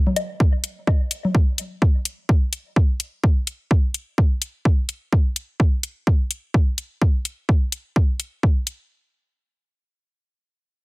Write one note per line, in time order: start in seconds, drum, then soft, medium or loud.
0.07 low conga medium
0.16 closed hi-hat loud
0.16 low woodblock medium
0.40 kick loud
0.64 closed hi-hat medium
0.87 kick loud
0.87 low woodblock medium
1.11 closed hi-hat medium
1.25 low conga medium
1.35 kick loud
1.58 closed hi-hat medium
1.82 kick loud
2.05 closed hi-hat medium
2.29 kick loud
2.53 closed hi-hat medium
2.76 kick loud
3.00 closed hi-hat medium
3.24 kick loud
3.47 closed hi-hat medium
3.71 kick loud
3.94 closed hi-hat medium
4.18 kick loud
4.42 closed hi-hat medium
4.65 kick loud
4.89 closed hi-hat medium
5.12 kick loud
5.36 closed hi-hat medium
5.60 kick loud
5.83 closed hi-hat medium
6.07 kick loud
6.31 closed hi-hat medium
6.54 kick loud
6.78 closed hi-hat medium
7.02 kick loud
7.25 closed hi-hat medium
7.49 kick loud
7.72 closed hi-hat medium
7.96 kick loud
8.20 closed hi-hat medium
8.43 kick loud
8.67 closed hi-hat medium